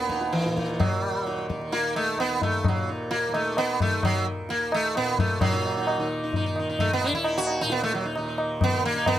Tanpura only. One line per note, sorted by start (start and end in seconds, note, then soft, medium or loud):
0.00 2.16 D#2 medium
0.00 0.46 A#2 medium
0.00 1.02 D#3 medium
0.46 2.71 A#2 medium
1.02 1.59 D#3 medium
1.59 3.28 D#3 medium
2.16 4.40 D#2 medium
2.72 4.96 A#2 medium
3.28 3.85 D#3 medium
3.85 5.98 D#3 medium
4.40 7.09 D#2 medium
4.96 5.41 A#2 medium
5.41 7.64 A#2 medium
5.98 6.54 D#3 medium
6.54 8.18 D#3 medium
7.10 9.19 D#2 medium
7.64 9.19 A#2 medium
8.18 8.73 D#3 medium
8.73 9.19 D#3 medium